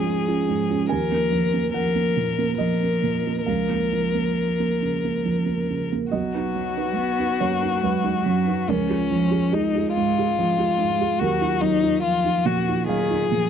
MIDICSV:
0, 0, Header, 1, 4, 480
1, 0, Start_track
1, 0, Key_signature, -6, "minor"
1, 0, Tempo, 840336
1, 518, Time_signature, 3, 2, 24, 8
1, 1480, Tempo, 877193
1, 3880, Tempo, 845070
1, 7582, End_track
2, 0, Start_track
2, 0, Title_t, "Violin"
2, 0, Program_c, 0, 40
2, 0, Note_on_c, 0, 68, 45
2, 492, Note_off_c, 0, 68, 0
2, 516, Note_on_c, 0, 70, 53
2, 971, Note_off_c, 0, 70, 0
2, 992, Note_on_c, 0, 70, 51
2, 1471, Note_off_c, 0, 70, 0
2, 1479, Note_on_c, 0, 70, 44
2, 1949, Note_off_c, 0, 70, 0
2, 1952, Note_on_c, 0, 70, 39
2, 3274, Note_off_c, 0, 70, 0
2, 3413, Note_on_c, 0, 66, 45
2, 4858, Note_on_c, 0, 61, 46
2, 4867, Note_off_c, 0, 66, 0
2, 5333, Note_on_c, 0, 63, 53
2, 5342, Note_off_c, 0, 61, 0
2, 5559, Note_off_c, 0, 63, 0
2, 5562, Note_on_c, 0, 65, 53
2, 6274, Note_on_c, 0, 66, 56
2, 6283, Note_off_c, 0, 65, 0
2, 6514, Note_on_c, 0, 63, 64
2, 6522, Note_off_c, 0, 66, 0
2, 6745, Note_off_c, 0, 63, 0
2, 6748, Note_on_c, 0, 65, 56
2, 6992, Note_on_c, 0, 66, 56
2, 7000, Note_off_c, 0, 65, 0
2, 7233, Note_off_c, 0, 66, 0
2, 7237, Note_on_c, 0, 68, 50
2, 7582, Note_off_c, 0, 68, 0
2, 7582, End_track
3, 0, Start_track
3, 0, Title_t, "Felt piano"
3, 0, Program_c, 1, 0
3, 0, Control_c, 1, 64, 127
3, 0, Note_on_c, 1, 37, 46
3, 0, Note_on_c, 1, 44, 41
3, 0, Note_on_c, 1, 56, 37
3, 0, Note_on_c, 1, 61, 39
3, 0, Note_on_c, 1, 65, 39
3, 0, Note_on_c, 1, 68, 55
3, 0, Note_on_c, 1, 70, 61
3, 33, Note_off_c, 1, 56, 0
3, 33, Note_on_c, 1, 56, 44
3, 160, Note_off_c, 1, 61, 0
3, 160, Note_on_c, 1, 61, 39
3, 161, Note_off_c, 1, 65, 0
3, 161, Note_on_c, 1, 65, 43
3, 228, Note_off_c, 1, 56, 0
3, 257, Note_off_c, 1, 68, 0
3, 267, Note_off_c, 1, 61, 0
3, 268, Note_off_c, 1, 65, 0
3, 278, Note_off_c, 1, 44, 0
3, 278, Note_on_c, 1, 44, 40
3, 399, Note_on_c, 1, 61, 36
3, 400, Note_on_c, 1, 65, 37
3, 469, Note_off_c, 1, 44, 0
3, 506, Note_off_c, 1, 61, 0
3, 507, Note_off_c, 1, 65, 0
3, 510, Note_on_c, 1, 80, 72
3, 518, Note_on_c, 1, 39, 46
3, 527, Control_c, 1, 64, 0
3, 530, Note_off_c, 1, 37, 0
3, 531, Note_off_c, 1, 70, 0
3, 620, Control_c, 1, 64, 127
3, 633, Note_off_c, 1, 39, 0
3, 638, Note_on_c, 1, 58, 40
3, 644, Note_on_c, 1, 70, 44
3, 744, Note_off_c, 1, 58, 0
3, 747, Note_off_c, 1, 70, 0
3, 755, Note_on_c, 1, 53, 39
3, 877, Note_on_c, 1, 58, 37
3, 882, Note_on_c, 1, 70, 40
3, 946, Note_off_c, 1, 53, 0
3, 967, Note_off_c, 1, 80, 0
3, 995, Note_on_c, 1, 78, 54
3, 1093, Note_off_c, 1, 58, 0
3, 1095, Note_off_c, 1, 70, 0
3, 1115, Note_on_c, 1, 58, 29
3, 1116, Note_on_c, 1, 70, 36
3, 1224, Note_off_c, 1, 58, 0
3, 1225, Note_off_c, 1, 70, 0
3, 1238, Note_on_c, 1, 46, 37
3, 1362, Note_on_c, 1, 58, 34
3, 1367, Note_on_c, 1, 70, 36
3, 1433, Note_off_c, 1, 46, 0
3, 1459, Note_off_c, 1, 78, 0
3, 1471, Note_off_c, 1, 58, 0
3, 1474, Note_off_c, 1, 70, 0
3, 1475, Note_on_c, 1, 75, 51
3, 1488, Note_on_c, 1, 53, 37
3, 1612, Note_on_c, 1, 58, 28
3, 1613, Note_on_c, 1, 70, 30
3, 1675, Note_off_c, 1, 53, 0
3, 1714, Note_off_c, 1, 58, 0
3, 1714, Note_off_c, 1, 70, 0
3, 1721, Note_on_c, 1, 46, 31
3, 1849, Note_on_c, 1, 58, 27
3, 1851, Note_on_c, 1, 70, 30
3, 1912, Note_off_c, 1, 46, 0
3, 1935, Note_off_c, 1, 75, 0
3, 1953, Note_off_c, 1, 58, 0
3, 1955, Note_off_c, 1, 70, 0
3, 1958, Note_on_c, 1, 77, 44
3, 1964, Note_on_c, 1, 37, 36
3, 1969, Control_c, 1, 64, 0
3, 2062, Control_c, 1, 64, 127
3, 2080, Note_off_c, 1, 37, 0
3, 2083, Note_on_c, 1, 58, 27
3, 2089, Note_on_c, 1, 70, 31
3, 2192, Note_off_c, 1, 58, 0
3, 2195, Note_off_c, 1, 70, 0
3, 2211, Note_on_c, 1, 53, 29
3, 2330, Note_on_c, 1, 58, 24
3, 2331, Note_on_c, 1, 70, 26
3, 2402, Note_off_c, 1, 53, 0
3, 2547, Note_off_c, 1, 58, 0
3, 2548, Note_off_c, 1, 70, 0
3, 2577, Note_on_c, 1, 58, 25
3, 2577, Note_on_c, 1, 70, 26
3, 2681, Note_off_c, 1, 58, 0
3, 2681, Note_off_c, 1, 70, 0
3, 2700, Note_on_c, 1, 49, 27
3, 2823, Note_on_c, 1, 58, 25
3, 2823, Note_on_c, 1, 70, 28
3, 2886, Note_off_c, 1, 49, 0
3, 2925, Note_off_c, 1, 58, 0
3, 2925, Note_off_c, 1, 70, 0
3, 2936, Note_on_c, 1, 53, 29
3, 3048, Note_on_c, 1, 58, 26
3, 3053, Note_on_c, 1, 70, 29
3, 3126, Note_off_c, 1, 53, 0
3, 3147, Note_off_c, 1, 77, 0
3, 3158, Note_off_c, 1, 58, 0
3, 3160, Note_off_c, 1, 70, 0
3, 3179, Note_on_c, 1, 49, 27
3, 3302, Note_on_c, 1, 58, 26
3, 3305, Note_on_c, 1, 70, 27
3, 3367, Note_off_c, 1, 49, 0
3, 3405, Note_off_c, 1, 58, 0
3, 3406, Note_off_c, 1, 70, 0
3, 3408, Note_on_c, 1, 75, 57
3, 3417, Note_on_c, 1, 35, 40
3, 3421, Control_c, 1, 64, 0
3, 3513, Control_c, 1, 64, 127
3, 3529, Note_off_c, 1, 35, 0
3, 3533, Note_on_c, 1, 63, 32
3, 3533, Note_on_c, 1, 71, 33
3, 3638, Note_off_c, 1, 63, 0
3, 3638, Note_off_c, 1, 71, 0
3, 3650, Note_on_c, 1, 54, 31
3, 3766, Note_on_c, 1, 63, 30
3, 3769, Note_on_c, 1, 71, 35
3, 3837, Note_off_c, 1, 54, 0
3, 3981, Note_off_c, 1, 63, 0
3, 3983, Note_off_c, 1, 71, 0
3, 4002, Note_on_c, 1, 63, 32
3, 4008, Note_on_c, 1, 71, 33
3, 4100, Note_off_c, 1, 75, 0
3, 4111, Note_off_c, 1, 63, 0
3, 4115, Note_off_c, 1, 71, 0
3, 4123, Note_on_c, 1, 73, 54
3, 4125, Note_on_c, 1, 42, 33
3, 4245, Note_on_c, 1, 63, 31
3, 4247, Note_on_c, 1, 71, 35
3, 4318, Note_off_c, 1, 42, 0
3, 4348, Note_off_c, 1, 73, 0
3, 4354, Note_off_c, 1, 63, 0
3, 4354, Note_off_c, 1, 71, 0
3, 4366, Note_on_c, 1, 54, 39
3, 4368, Note_on_c, 1, 71, 57
3, 4479, Note_off_c, 1, 71, 0
3, 4483, Note_on_c, 1, 63, 35
3, 4488, Note_on_c, 1, 71, 35
3, 4559, Note_off_c, 1, 54, 0
3, 4593, Note_off_c, 1, 63, 0
3, 4596, Note_off_c, 1, 71, 0
3, 4608, Note_on_c, 1, 42, 36
3, 4723, Note_on_c, 1, 63, 31
3, 4728, Note_on_c, 1, 71, 34
3, 4800, Note_off_c, 1, 42, 0
3, 4833, Note_off_c, 1, 63, 0
3, 4836, Note_off_c, 1, 71, 0
3, 4850, Note_on_c, 1, 37, 48
3, 4851, Note_on_c, 1, 70, 58
3, 4858, Control_c, 1, 64, 0
3, 4944, Control_c, 1, 64, 127
3, 4965, Note_off_c, 1, 37, 0
3, 4968, Note_on_c, 1, 68, 40
3, 4973, Note_on_c, 1, 65, 37
3, 5076, Note_off_c, 1, 68, 0
3, 5079, Note_off_c, 1, 65, 0
3, 5092, Note_on_c, 1, 53, 41
3, 5203, Note_on_c, 1, 65, 38
3, 5204, Note_on_c, 1, 68, 44
3, 5282, Note_off_c, 1, 53, 0
3, 5307, Note_off_c, 1, 70, 0
3, 5315, Note_off_c, 1, 68, 0
3, 5323, Note_on_c, 1, 68, 60
3, 5423, Note_off_c, 1, 65, 0
3, 5452, Note_off_c, 1, 68, 0
3, 5453, Note_on_c, 1, 65, 38
3, 5460, Note_on_c, 1, 68, 39
3, 5559, Note_off_c, 1, 65, 0
3, 5563, Note_off_c, 1, 68, 0
3, 5580, Note_on_c, 1, 44, 42
3, 5700, Note_on_c, 1, 65, 38
3, 5704, Note_on_c, 1, 68, 44
3, 5766, Note_off_c, 1, 44, 0
3, 5803, Note_off_c, 1, 65, 0
3, 5805, Note_off_c, 1, 68, 0
3, 5817, Note_on_c, 1, 53, 45
3, 5930, Note_on_c, 1, 68, 46
3, 5931, Note_on_c, 1, 65, 41
3, 6004, Note_off_c, 1, 53, 0
3, 6036, Note_off_c, 1, 68, 0
3, 6037, Note_off_c, 1, 65, 0
3, 6043, Note_on_c, 1, 44, 43
3, 6169, Note_on_c, 1, 65, 40
3, 6169, Note_on_c, 1, 68, 46
3, 6235, Note_off_c, 1, 44, 0
3, 6274, Note_off_c, 1, 65, 0
3, 6274, Note_off_c, 1, 68, 0
3, 6282, Note_on_c, 1, 39, 58
3, 6283, Note_on_c, 1, 70, 69
3, 6294, Control_c, 1, 64, 0
3, 6381, Control_c, 1, 64, 127
3, 6397, Note_off_c, 1, 39, 0
3, 6397, Note_on_c, 1, 63, 45
3, 6400, Note_on_c, 1, 65, 44
3, 6504, Note_off_c, 1, 63, 0
3, 6506, Note_off_c, 1, 65, 0
3, 6515, Note_on_c, 1, 54, 41
3, 6636, Note_on_c, 1, 65, 44
3, 6637, Note_on_c, 1, 63, 42
3, 6705, Note_off_c, 1, 54, 0
3, 6850, Note_off_c, 1, 63, 0
3, 6850, Note_off_c, 1, 65, 0
3, 6869, Note_on_c, 1, 63, 39
3, 6875, Note_on_c, 1, 65, 44
3, 6969, Note_off_c, 1, 70, 0
3, 6978, Note_off_c, 1, 63, 0
3, 6981, Note_off_c, 1, 65, 0
3, 6990, Note_on_c, 1, 46, 45
3, 6993, Note_on_c, 1, 78, 71
3, 7118, Note_on_c, 1, 63, 36
3, 7119, Note_on_c, 1, 65, 42
3, 7185, Note_off_c, 1, 46, 0
3, 7218, Note_off_c, 1, 78, 0
3, 7225, Note_off_c, 1, 63, 0
3, 7226, Note_off_c, 1, 65, 0
3, 7238, Note_on_c, 1, 54, 39
3, 7240, Note_on_c, 1, 77, 70
3, 7359, Note_on_c, 1, 65, 41
3, 7360, Note_on_c, 1, 63, 34
3, 7434, Note_off_c, 1, 54, 0
3, 7470, Note_off_c, 1, 63, 0
3, 7470, Note_off_c, 1, 65, 0
3, 7480, Note_on_c, 1, 46, 35
3, 7582, Note_off_c, 1, 46, 0
3, 7582, Note_off_c, 1, 77, 0
3, 7582, End_track
4, 0, Start_track
4, 0, Title_t, "Cello"
4, 0, Program_c, 2, 42
4, 0, Note_on_c, 2, 53, 45
4, 496, Note_off_c, 2, 53, 0
4, 514, Note_on_c, 2, 53, 48
4, 969, Note_off_c, 2, 53, 0
4, 989, Note_on_c, 2, 53, 49
4, 1469, Note_off_c, 2, 53, 0
4, 1473, Note_on_c, 2, 53, 48
4, 1946, Note_off_c, 2, 53, 0
4, 1960, Note_on_c, 2, 53, 36
4, 3278, Note_off_c, 2, 53, 0
4, 3412, Note_on_c, 2, 54, 40
4, 3879, Note_on_c, 2, 59, 46
4, 3888, Note_off_c, 2, 54, 0
4, 4124, Note_on_c, 2, 58, 44
4, 4132, Note_off_c, 2, 59, 0
4, 4361, Note_on_c, 2, 56, 48
4, 4369, Note_off_c, 2, 58, 0
4, 4599, Note_on_c, 2, 54, 49
4, 4607, Note_off_c, 2, 56, 0
4, 4850, Note_on_c, 2, 53, 47
4, 4858, Note_off_c, 2, 54, 0
4, 5079, Note_off_c, 2, 53, 0
4, 5082, Note_on_c, 2, 53, 49
4, 5326, Note_on_c, 2, 56, 57
4, 5334, Note_off_c, 2, 53, 0
4, 6277, Note_off_c, 2, 56, 0
4, 6280, Note_on_c, 2, 54, 50
4, 6739, Note_on_c, 2, 53, 55
4, 6747, Note_off_c, 2, 54, 0
4, 7224, Note_on_c, 2, 51, 54
4, 7232, Note_off_c, 2, 53, 0
4, 7466, Note_off_c, 2, 51, 0
4, 7469, Note_on_c, 2, 53, 51
4, 7582, Note_off_c, 2, 53, 0
4, 7582, End_track
0, 0, End_of_file